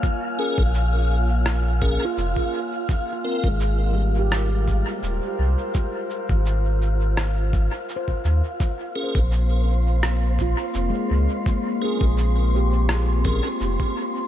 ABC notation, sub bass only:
X:1
M:4/4
L:1/16
Q:"Swing 16ths" 1/4=84
K:Bbdor
V:1 name="Sub bass" clef=bass
z3 B,,,8 z F,,, z3 | z3 A,,,8 z E,,, z C,, z | z3 A,,,8 z3 E,, z | z3 B,,,8 z F,,, z D,, z |
z3 B,,,8 z F,,, z3 |]